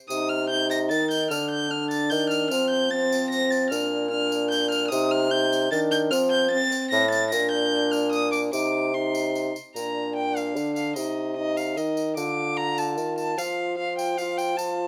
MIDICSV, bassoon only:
0, 0, Header, 1, 2, 480
1, 0, Start_track
1, 0, Tempo, 402145
1, 118, Time_signature, 3, 2, 24, 8
1, 17756, End_track
2, 0, Start_track
2, 0, Title_t, "Bassoon"
2, 0, Program_c, 0, 70
2, 118, Note_on_c, 0, 48, 65
2, 1079, Note_on_c, 0, 51, 73
2, 1097, Note_off_c, 0, 48, 0
2, 1553, Note_off_c, 0, 51, 0
2, 1560, Note_on_c, 0, 50, 67
2, 2502, Note_off_c, 0, 50, 0
2, 2523, Note_on_c, 0, 51, 69
2, 3000, Note_on_c, 0, 53, 66
2, 3018, Note_off_c, 0, 51, 0
2, 4428, Note_off_c, 0, 53, 0
2, 4435, Note_on_c, 0, 46, 69
2, 5838, Note_off_c, 0, 46, 0
2, 5868, Note_on_c, 0, 48, 84
2, 6804, Note_off_c, 0, 48, 0
2, 6824, Note_on_c, 0, 51, 81
2, 7302, Note_on_c, 0, 53, 78
2, 7320, Note_off_c, 0, 51, 0
2, 7923, Note_off_c, 0, 53, 0
2, 8259, Note_on_c, 0, 45, 78
2, 8736, Note_on_c, 0, 46, 71
2, 8754, Note_off_c, 0, 45, 0
2, 10173, Note_off_c, 0, 46, 0
2, 10180, Note_on_c, 0, 48, 73
2, 11379, Note_off_c, 0, 48, 0
2, 11648, Note_on_c, 0, 46, 54
2, 12606, Note_on_c, 0, 50, 59
2, 12624, Note_off_c, 0, 46, 0
2, 13083, Note_on_c, 0, 48, 52
2, 13101, Note_off_c, 0, 50, 0
2, 14051, Note_on_c, 0, 51, 60
2, 14069, Note_off_c, 0, 48, 0
2, 14519, Note_off_c, 0, 51, 0
2, 14526, Note_on_c, 0, 50, 55
2, 15487, Note_on_c, 0, 51, 60
2, 15505, Note_off_c, 0, 50, 0
2, 15959, Note_off_c, 0, 51, 0
2, 15966, Note_on_c, 0, 53, 59
2, 17756, Note_off_c, 0, 53, 0
2, 17756, End_track
0, 0, End_of_file